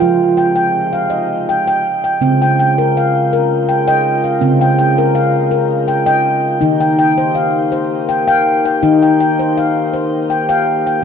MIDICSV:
0, 0, Header, 1, 3, 480
1, 0, Start_track
1, 0, Tempo, 734394
1, 10, Time_signature, 3, 2, 24, 8
1, 7216, End_track
2, 0, Start_track
2, 0, Title_t, "Handpan"
2, 0, Program_c, 0, 114
2, 0, Note_on_c, 0, 65, 70
2, 0, Note_on_c, 0, 79, 53
2, 11, Note_on_c, 0, 53, 64
2, 134, Note_off_c, 0, 79, 0
2, 244, Note_off_c, 0, 65, 0
2, 244, Note_on_c, 0, 79, 59
2, 356, Note_off_c, 0, 79, 0
2, 364, Note_on_c, 0, 79, 54
2, 377, Note_off_c, 0, 79, 0
2, 607, Note_on_c, 0, 77, 52
2, 719, Note_on_c, 0, 75, 59
2, 964, Note_off_c, 0, 75, 0
2, 966, Note_off_c, 0, 77, 0
2, 974, Note_on_c, 0, 79, 56
2, 1087, Note_off_c, 0, 79, 0
2, 1095, Note_on_c, 0, 79, 62
2, 1325, Note_off_c, 0, 79, 0
2, 1333, Note_on_c, 0, 79, 52
2, 1424, Note_off_c, 0, 53, 0
2, 1444, Note_on_c, 0, 49, 59
2, 1449, Note_on_c, 0, 60, 79
2, 1572, Note_off_c, 0, 79, 0
2, 1580, Note_on_c, 0, 79, 60
2, 1688, Note_off_c, 0, 79, 0
2, 1689, Note_off_c, 0, 60, 0
2, 1696, Note_on_c, 0, 79, 56
2, 1819, Note_on_c, 0, 70, 67
2, 1942, Note_on_c, 0, 77, 58
2, 2057, Note_off_c, 0, 70, 0
2, 2058, Note_off_c, 0, 79, 0
2, 2176, Note_on_c, 0, 70, 65
2, 2301, Note_off_c, 0, 77, 0
2, 2410, Note_on_c, 0, 79, 58
2, 2413, Note_off_c, 0, 70, 0
2, 2525, Note_off_c, 0, 79, 0
2, 2533, Note_on_c, 0, 79, 73
2, 2535, Note_on_c, 0, 75, 61
2, 2771, Note_on_c, 0, 77, 51
2, 2774, Note_off_c, 0, 79, 0
2, 2862, Note_off_c, 0, 49, 0
2, 2883, Note_on_c, 0, 60, 75
2, 2889, Note_on_c, 0, 49, 67
2, 2890, Note_off_c, 0, 75, 0
2, 3014, Note_on_c, 0, 79, 59
2, 3120, Note_off_c, 0, 79, 0
2, 3127, Note_off_c, 0, 60, 0
2, 3128, Note_on_c, 0, 79, 58
2, 3129, Note_off_c, 0, 77, 0
2, 3254, Note_on_c, 0, 70, 70
2, 3366, Note_on_c, 0, 77, 61
2, 3495, Note_off_c, 0, 70, 0
2, 3495, Note_off_c, 0, 79, 0
2, 3601, Note_on_c, 0, 70, 65
2, 3734, Note_off_c, 0, 77, 0
2, 3842, Note_on_c, 0, 79, 62
2, 3846, Note_off_c, 0, 70, 0
2, 3954, Note_off_c, 0, 79, 0
2, 3962, Note_on_c, 0, 79, 69
2, 3963, Note_on_c, 0, 75, 60
2, 4209, Note_off_c, 0, 79, 0
2, 4304, Note_off_c, 0, 49, 0
2, 4319, Note_on_c, 0, 63, 73
2, 4325, Note_off_c, 0, 75, 0
2, 4328, Note_on_c, 0, 51, 64
2, 4447, Note_on_c, 0, 79, 61
2, 4558, Note_off_c, 0, 79, 0
2, 4565, Note_off_c, 0, 63, 0
2, 4566, Note_on_c, 0, 79, 60
2, 4691, Note_on_c, 0, 72, 62
2, 4804, Note_on_c, 0, 77, 57
2, 4934, Note_off_c, 0, 72, 0
2, 4934, Note_off_c, 0, 79, 0
2, 5045, Note_on_c, 0, 72, 67
2, 5173, Note_off_c, 0, 77, 0
2, 5286, Note_on_c, 0, 79, 64
2, 5288, Note_off_c, 0, 72, 0
2, 5401, Note_off_c, 0, 79, 0
2, 5409, Note_on_c, 0, 77, 60
2, 5409, Note_on_c, 0, 79, 71
2, 5649, Note_off_c, 0, 79, 0
2, 5656, Note_on_c, 0, 79, 55
2, 5744, Note_off_c, 0, 51, 0
2, 5768, Note_off_c, 0, 77, 0
2, 5769, Note_on_c, 0, 51, 66
2, 5769, Note_on_c, 0, 63, 80
2, 5891, Note_off_c, 0, 79, 0
2, 5899, Note_on_c, 0, 79, 54
2, 6008, Note_off_c, 0, 79, 0
2, 6010, Note_off_c, 0, 63, 0
2, 6015, Note_on_c, 0, 79, 57
2, 6138, Note_on_c, 0, 72, 63
2, 6258, Note_on_c, 0, 77, 58
2, 6377, Note_off_c, 0, 72, 0
2, 6378, Note_off_c, 0, 79, 0
2, 6493, Note_on_c, 0, 72, 63
2, 6619, Note_off_c, 0, 77, 0
2, 6732, Note_off_c, 0, 72, 0
2, 6732, Note_on_c, 0, 79, 58
2, 6848, Note_off_c, 0, 79, 0
2, 6856, Note_on_c, 0, 79, 69
2, 6858, Note_on_c, 0, 77, 57
2, 7095, Note_off_c, 0, 79, 0
2, 7102, Note_on_c, 0, 79, 54
2, 7183, Note_off_c, 0, 51, 0
2, 7211, Note_off_c, 0, 77, 0
2, 7216, Note_off_c, 0, 79, 0
2, 7216, End_track
3, 0, Start_track
3, 0, Title_t, "French horn section"
3, 0, Program_c, 1, 60
3, 0, Note_on_c, 1, 56, 50
3, 0, Note_on_c, 1, 65, 62
3, 3, Note_on_c, 1, 48, 64
3, 1331, Note_off_c, 1, 48, 0
3, 1331, Note_off_c, 1, 56, 0
3, 1331, Note_off_c, 1, 65, 0
3, 1442, Note_on_c, 1, 49, 61
3, 1442, Note_on_c, 1, 56, 54
3, 1444, Note_on_c, 1, 65, 68
3, 4301, Note_off_c, 1, 49, 0
3, 4301, Note_off_c, 1, 56, 0
3, 4302, Note_off_c, 1, 65, 0
3, 4320, Note_on_c, 1, 51, 64
3, 4322, Note_on_c, 1, 58, 58
3, 4325, Note_on_c, 1, 67, 70
3, 7178, Note_off_c, 1, 51, 0
3, 7179, Note_off_c, 1, 58, 0
3, 7181, Note_off_c, 1, 67, 0
3, 7216, End_track
0, 0, End_of_file